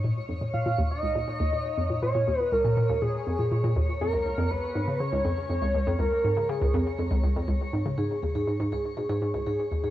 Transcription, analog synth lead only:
0.53 0.88 F5 loud
0.91 1.99 D#5 loud
2.02 2.39 C#5 loud
2.39 2.54 B4 loud
2.52 3.01 A#4 medium
3.02 3.72 G#4 medium
4.01 4.52 A#4 loud
4.51 5.02 B4 loud
5.00 6.01 C#5 loud
6.00 6.51 A#4 loud
6.49 6.99 G#4 medium

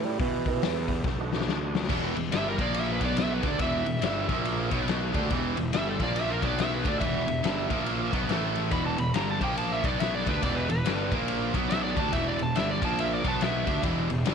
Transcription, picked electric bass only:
0.00 0.19 A2 loud
0.20 0.61 B2 medium
0.62 1.03 E2 medium
1.04 1.46 B1 medium
1.47 1.88 D2 medium
1.90 2.14 E1 medium
2.15 2.31 E1 medium
2.32 2.56 G1 medium
2.58 2.98 A#1 medium
3.01 3.41 B1 medium
3.43 3.59 D2 medium
3.59 3.84 E1 medium
3.87 4.02 E1 medium
4.03 4.27 G1 medium
4.29 4.69 A#1 medium
4.72 5.11 B1 medium
5.14 5.29 D2 medium
5.31 5.55 E1 medium
5.57 5.72 E1 medium
5.74 5.98 G1 medium
6.00 6.39 A#1 loud
6.42 6.82 B1 medium
6.85 7.00 D2 medium
7.01 7.26 E1 medium
7.28 7.43 E1 medium
7.44 7.69 G1 medium
7.70 8.10 A#1 medium
8.13 8.28 B1 medium
8.28 8.69 A1 medium
8.72 8.97 E1 medium
8.98 9.13 E1 medium
9.14 9.39 G1 medium
9.41 9.81 A#1 medium
9.84 10.23 B1 medium
10.27 10.42 D2 medium
10.43 10.67 E1 loud
10.69 10.84 E1 medium
10.85 11.10 G1 medium
11.12 11.51 A#1 medium
11.54 11.94 B1 medium
11.96 12.12 D2 medium
12.13 12.38 E1 medium
12.40 12.55 E1 medium
12.56 12.80 G1 medium
12.82 13.22 A#1 medium
13.24 13.64 B1 medium
13.67 13.82 D2 medium
13.83 14.08 E1 medium
14.10 14.25 E1 medium
14.26 14.34 G1 medium

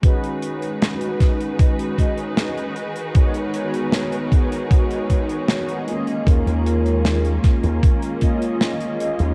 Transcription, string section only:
0.03 9.34 D#3 medium
0.03 5.84 D#4 medium
0.03 5.84 F#4 medium
0.03 9.34 G#4 medium
0.03 5.84 B4 medium
2.77 5.85 A#4 medium
5.88 9.34 A#3 medium
5.88 9.34 C#4 medium
5.88 9.34 F4 medium

